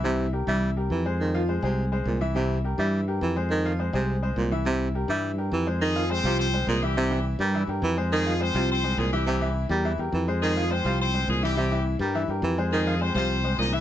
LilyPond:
<<
  \new Staff \with { instrumentName = "Upright piano" } { \time 4/4 \key f \minor \tempo 4 = 208 <e e' e''>4 <g g' bes'>8 <e e' e''>4 <g g' bes'>4 <aes aes' c''>8~ | <aes aes' c''>8 <f f' f''>8 <aes aes' c''>8 <aes aes' c''>4 <aes aes' c''>4 <e e' e''>8 | <e e' e''>4 <g g' bes'>8 <e e' e''>4 <g g' bes'>4 <aes aes' c''>8~ | <aes aes' c''>8 <f f' f''>8 <aes aes' c''>8 <aes aes' c''>4 <aes aes' c''>4 <e e' e''>8 |
<e e' e''>4 <g g' bes'>8 <e e' e''>4 <g g' bes'>4 <aes aes' c''>8 | r8 <f f' f''>8 <aes aes' c''>8 <f f' f''>4 <aes aes' c''>4 <e e' e''>8 | <e e' e''>8 <e e' e''>4 <g g' bes'>8 <e e' e''>8 <g g' bes'>4 <aes aes' c''>8~ | <aes aes' c''>8 <f f' f''>8 <aes aes' c''>8 <f f' f''>4 <aes aes' c''>4 <e e' e''>8 |
<e e' e''>8 <e e' e''>4 <g g' bes'>8 <e e' e''>8 <g g' bes'>4 <aes aes' c''>8~ | <aes aes' c''>8 <f f' f''>8 <aes aes' c''>8 <f f' f''>4 <aes aes' c''>4 <e e' e''>8 | <e e' e''>8 <e e' e''>4 <g g' bes'>8 <e e' e''>8 <g g' bes'>4 <aes aes' c''>8~ | <aes aes' c''>8 <f f' f''>8 <aes aes' c''>8 <f f' f''>4 <aes aes' c''>4 <e e' e''>8 | }
  \new Staff \with { instrumentName = "Horn section" } { \time 4/4 \key f \minor r1 | r1 | r1 | r1 |
r1 | <aes aes'>4 <c' c''>4 <c' c''>4 <aes aes'>8 <g g'>8~ | <g g'>4 r2. | <aes aes'>4 <c' c''>4 <c' c''>4 <aes aes'>8 <g g'>8~ |
<g g'>4 r2. | <aes aes'>4 <c' c''>4 <c' c''>4 <aes aes'>8 <g g'>8~ | <g g'>4 r2. | <aes aes'>4 <c' c''>8 <c' c''>4. <ees' ees''>8 <e' e''>8 | }
  \new Staff \with { instrumentName = "Baritone saxophone" } { \clef bass \time 4/4 \key f \minor c4. g4. e4 | ees4. c4. bes,4 | c4. g4. e4 | ees4. c4. bes,4 |
c4. g4. e4 | ees4. c4. bes,4 | c4. g4. e4 | ees4. c4. bes,4 |
c4. g4. e4 | ees4. c4. bes,4 | c4. g4. e4 | ees4. c4. bes,4 | }
  \new Staff \with { instrumentName = "Fingered electric bass" } { \clef bass \time 4/4 \key f \minor c,4. c,4. f,4~ | f,4. c,4. c,4~ | c,4. g,4. f,4~ | f,4. c,4. c,4~ |
c,4. g,4. f,4~ | f,4. c,4. c,4~ | c,4. g,4 g,8 f,4~ | f,4. c,4. c,4~ |
c,4. e,4 e,8 f,4~ | f,4. c,4. c,4~ | c,4. g,4 g,8 f,4~ | f,4. c,4. c,4 | }
>>